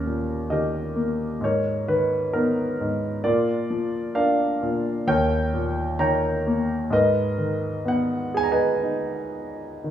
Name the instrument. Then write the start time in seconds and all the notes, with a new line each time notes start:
grand piano
Already playing: D#2 C#4 G4 A#4
0.06 A#2
0.50 D#3 G4 A#4 D#5
0.96 A#3
1.41 G#2 C#5
1.45 A#4
1.88 D#3 B4
2.33 B3 D#4 A#4
2.81 G#2
3.24 A#2 F4 A#4 D5
3.70 F3
4.15 D4 A#4 D5 F5
4.62 A#2
5.07 D#2 A#4 C#5 G5
5.54 A#2
5.99 D#3 C#5 G5 A#5
6.47 A#3
6.90 G#2 A#4 B4 D#5
7.38 D#3
7.85 B3 F#5
8.34 G#4 G#5
8.43 A#5
8.51 B4 D#5 G#5
8.83 D#4
9.84 D#3